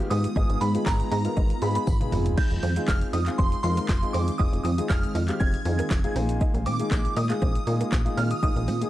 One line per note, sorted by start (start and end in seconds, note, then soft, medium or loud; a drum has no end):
0.00 8.90 D#3 medium
0.00 0.25 G#3 medium
0.00 2.08 G#3 medium
0.00 0.25 B3 medium
0.00 2.08 B3 medium
0.00 0.25 D#4 medium
0.00 0.25 F4 medium
0.00 4.10 F4 medium
0.00 0.25 G4 medium
0.10 0.27 G#2 loud
0.10 0.22 B3 medium
0.10 0.63 D#6 loud
0.10 open hi-hat medium
0.10 shaker medium
0.24 closed hi-hat medium
0.24 shaker medium
0.36 0.45 G#1 loud
0.36 0.62 G#3 medium
0.36 0.62 B3 medium
0.36 0.62 D#4 medium
0.36 0.47 D#4 medium
0.36 0.62 F4 medium
0.36 0.62 G#4 medium
0.36 kick loud
0.36 shaker medium
0.50 0.57 G#1 loud
0.50 closed hi-hat soft
0.50 shaker soft
0.61 0.78 G#2 loud
0.61 0.72 B3 medium
0.61 0.85 B5 medium
0.61 open hi-hat medium
0.61 shaker medium
0.74 1.08 G#3 medium
0.74 1.08 B3 medium
0.74 1.08 D#4 medium
0.74 1.08 F4 medium
0.74 1.08 G#4 medium
0.74 muted clean electric guitar stroke soft
0.74 closed hi-hat medium
0.74 shaker medium
0.86 1.03 G#1 loud
0.86 1.10 A#5 medium
0.86 kick loud
0.86 snare medium
0.86 clap loud
0.86 tambourine medium
0.86 shaker medium
1.00 closed hi-hat medium
1.00 shaker medium
1.12 1.28 G#2 loud
1.12 1.23 D#4 medium
1.12 1.59 A#5 medium
1.12 open hi-hat medium
1.12 shaker medium
1.25 1.51 G#3 medium
1.25 1.51 B3 medium
1.25 1.51 D#4 medium
1.25 1.51 F4 medium
1.25 1.51 A#4 medium
1.25 closed hi-hat medium
1.25 shaker medium
1.37 1.53 G#1 loud
1.37 1.48 D#4 medium
1.37 kick loud
1.37 shaker medium
1.50 closed hi-hat medium
1.50 shaker medium
1.62 1.79 G#2 loud
1.62 1.88 G#3 medium
1.62 1.88 B3 medium
1.62 1.88 D#4 medium
1.62 1.88 F4 medium
1.62 1.88 G#4 medium
1.62 1.74 B5 medium
1.62 muted clean electric guitar stroke soft
1.62 open hi-hat medium
1.62 shaker medium
1.75 1.85 B3 medium
1.75 2.10 B5 medium
1.75 closed hi-hat medium
1.75 shaker medium
1.87 2.04 G#1 loud
1.87 kick loud
1.87 high tom medium
1.87 tambourine medium
1.87 shaker medium
2.00 2.11 G#3 medium
2.00 2.12 B3 medium
2.00 2.11 D#4 medium
2.00 2.11 F4 medium
2.00 2.12 G#4 medium
2.00 closed hi-hat soft
2.00 mid tom medium
2.00 shaker medium
2.12 2.38 F1 loud
2.12 2.23 G#3 medium
2.12 2.63 G#3 medium
2.12 8.90 G#3 medium
2.12 6.12 C4 medium
2.12 2.63 C4 medium
2.12 2.63 D#4 medium
2.12 2.63 F4 medium
2.12 2.63 G#4 medium
2.12 mid tom loud
2.12 open hi-hat medium
2.12 shaker medium
2.26 closed hi-hat medium
2.26 floor tom medium
2.26 shaker medium
2.38 2.49 D#4 medium
2.38 2.90 G6 loud
2.38 kick loud
2.38 crash medium
2.51 2.59 F1 medium
2.51 closed hi-hat soft
2.51 shaker soft
2.63 2.79 F2 loud
2.63 2.74 C4 medium
2.63 open hi-hat medium
2.63 shaker medium
2.76 3.10 G#3 medium
2.76 3.10 C4 medium
2.76 3.10 D#4 medium
2.76 3.10 F4 medium
2.76 3.10 G#4 medium
2.76 muted clean electric guitar stroke soft
2.76 closed hi-hat medium
2.76 shaker medium
2.88 3.05 F1 loud
2.88 2.99 F6 medium
2.88 kick loud
2.88 snare medium
2.88 clap loud
2.88 tambourine medium
2.88 shaker medium
3.01 closed hi-hat medium
3.01 shaker medium
3.13 3.30 F2 loud
3.13 3.24 D#4 medium
3.13 3.25 D#6 medium
3.13 open hi-hat medium
3.13 shaker medium
3.26 3.52 G#3 medium
3.26 3.52 C4 medium
3.26 3.53 D#4 medium
3.26 3.53 F4 medium
3.26 3.53 G#4 medium
3.26 clap medium
3.26 closed hi-hat medium
3.26 shaker medium
3.38 3.55 F1 loud
3.38 3.50 C4 medium
3.38 3.62 C6 medium
3.38 kick loud
3.38 shaker medium
3.52 closed hi-hat medium
3.52 shaker medium
3.63 3.80 F2 loud
3.63 3.90 G#3 medium
3.63 3.90 C4 medium
3.63 3.90 D#4 medium
3.63 3.90 F4 medium
3.63 3.90 A#4 medium
3.63 4.15 C6 medium
3.63 muted clean electric guitar stroke soft
3.63 open hi-hat medium
3.63 shaker medium
3.77 3.87 A#3 medium
3.77 closed hi-hat medium
3.77 shaker medium
3.89 4.05 F1 loud
3.89 kick loud
3.89 snare loud
3.89 clap loud
3.89 tambourine medium
3.89 shaker medium
4.02 4.28 G#3 medium
4.02 4.28 C4 medium
4.02 4.28 D#4 medium
4.02 4.28 F4 medium
4.02 4.28 G#4 medium
4.02 closed hi-hat medium
4.02 shaker medium
4.13 4.31 F2 loud
4.13 4.25 C4 medium
4.13 6.14 D#4 medium
4.13 4.40 D6 medium
4.13 open hi-hat medium
4.13 shaker medium
4.28 closed hi-hat medium
4.28 shaker medium
4.38 4.48 F1 loud
4.38 4.65 G#3 medium
4.38 4.65 C4 medium
4.38 4.50 D#4 medium
4.38 4.65 D#4 medium
4.38 4.65 F4 medium
4.38 4.65 G#4 medium
4.38 4.50 D#6 loud
4.38 kick loud
4.38 shaker medium
4.53 4.60 F1 loud
4.53 closed hi-hat soft
4.53 shaker soft
4.64 4.81 F2 loud
4.64 4.76 C4 medium
4.64 4.90 D#6 medium
4.64 open hi-hat medium
4.64 shaker medium
4.78 5.12 G#3 medium
4.78 5.12 C4 medium
4.78 5.12 D#4 medium
4.78 5.12 F4 medium
4.78 5.12 G#4 medium
4.78 muted clean electric guitar stroke soft
4.78 closed hi-hat medium
4.78 shaker medium
4.89 5.06 F1 medium
4.89 5.41 F6 loud
4.89 kick loud
4.89 snare medium
4.89 clap loud
4.89 tambourine medium
4.89 shaker medium
5.04 closed hi-hat medium
5.04 shaker medium
5.15 5.31 F2 loud
5.15 5.26 D#4 medium
5.15 open hi-hat medium
5.15 shaker medium
5.28 5.54 G#3 medium
5.28 5.54 C4 medium
5.28 5.54 D#4 medium
5.28 5.54 F4 medium
5.28 5.54 G4 medium
5.28 clap medium
5.28 closed hi-hat medium
5.28 shaker medium
5.40 5.57 F1 loud
5.40 5.51 C4 medium
5.40 6.12 G#6 loud
5.40 kick loud
5.40 shaker medium
5.54 closed hi-hat medium
5.54 shaker medium
5.65 5.82 F2 loud
5.65 5.91 G#3 medium
5.65 5.91 C4 medium
5.65 5.91 D#4 medium
5.65 5.91 F4 medium
5.65 5.91 G#4 medium
5.65 muted clean electric guitar stroke soft
5.65 open hi-hat medium
5.65 shaker medium
5.79 5.89 A#3 medium
5.79 closed hi-hat medium
5.79 shaker medium
5.90 6.07 F1 loud
5.90 kick loud
5.90 snare medium
5.90 clap loud
5.90 tambourine medium
5.90 shaker medium
6.04 6.14 G#3 medium
6.04 6.16 C4 medium
6.04 6.14 D#4 medium
6.04 6.14 F4 medium
6.04 6.15 G#4 loud
6.04 closed hi-hat medium
6.04 shaker soft
6.16 6.41 A#1 loud
6.16 6.66 G#3 medium
6.16 6.66 A#3 medium
6.16 8.16 A#3 medium
6.16 6.27 C4 medium
6.16 6.66 D#4 medium
6.16 6.66 F4 medium
6.16 8.90 F4 medium
6.16 6.66 G#4 loud
6.16 open hi-hat medium
6.16 shaker medium
6.29 closed hi-hat medium
6.29 shaker medium
6.41 6.52 D#4 medium
6.41 kick loud
6.41 shaker medium
6.54 6.68 A#1 loud
6.54 closed hi-hat soft
6.54 shaker soft
6.66 6.83 A#2 loud
6.66 6.77 C4 medium
6.66 7.13 D6 loud
6.66 open hi-hat medium
6.66 shaker medium
6.79 7.13 G#3 medium
6.79 7.13 A#3 medium
6.79 7.13 D#4 medium
6.79 7.13 F4 medium
6.79 7.13 G#4 medium
6.79 muted clean electric guitar stroke soft
6.79 closed hi-hat medium
6.79 shaker medium
6.91 7.08 A#1 loud
6.91 kick loud
6.91 snare medium
6.91 clap loud
6.91 tambourine medium
6.91 shaker medium
7.05 closed hi-hat medium
7.05 shaker medium
7.17 7.33 A#2 loud
7.17 7.28 D#4 medium
7.17 8.21 D#6 loud
7.17 open hi-hat medium
7.17 shaker medium
7.29 7.55 G#3 medium
7.29 7.56 A#3 medium
7.29 7.56 D#4 medium
7.29 7.56 F4 medium
7.29 7.56 G#4 medium
7.29 clap medium
7.29 closed hi-hat medium
7.29 shaker medium
7.42 7.58 A#1 loud
7.42 7.53 C4 medium
7.42 kick loud
7.42 shaker medium
7.55 closed hi-hat medium
7.55 shaker medium
7.67 7.84 A#2 loud
7.67 7.93 G#3 medium
7.67 7.93 A#3 medium
7.67 7.93 D#4 medium
7.67 7.93 F4 medium
7.67 7.93 G#4 medium
7.67 muted clean electric guitar stroke soft
7.67 open hi-hat medium
7.67 shaker medium
7.81 7.90 A#3 medium
7.81 closed hi-hat medium
7.81 shaker medium
7.92 8.09 A#1 loud
7.92 kick loud
7.92 snare medium
7.92 clap loud
7.92 tambourine medium
7.92 shaker medium
8.05 8.31 G#3 medium
8.05 8.31 A#3 medium
8.05 8.31 D#4 medium
8.05 8.31 F4 medium
8.05 8.31 G#4 medium
8.05 closed hi-hat soft
8.05 shaker soft
8.17 8.34 A#2 loud
8.17 8.90 C4 medium
8.17 8.29 C4 medium
8.17 8.30 F6 loud
8.17 open hi-hat medium
8.17 shaker medium
8.31 8.42 D#6 loud
8.31 closed hi-hat medium
8.31 shaker medium
8.43 8.52 A#1 loud
8.43 8.68 G#3 medium
8.43 8.68 A#3 medium
8.43 8.68 D#4 medium
8.43 8.54 D#4 medium
8.43 8.69 F4 medium
8.43 8.69 G#4 medium
8.43 8.90 D#6 loud
8.43 kick loud
8.43 shaker medium
8.56 8.69 A#1 loud
8.56 closed hi-hat soft
8.56 shaker medium
8.68 8.84 A#2 loud
8.68 8.79 C4 medium
8.68 open hi-hat medium
8.68 shaker medium
8.81 8.90 G#3 medium
8.81 8.90 A#3 medium
8.81 8.90 D#4 medium
8.81 8.90 F4 medium
8.81 8.90 G#4 medium
8.81 muted clean electric guitar stroke soft
8.81 closed hi-hat medium
8.81 shaker medium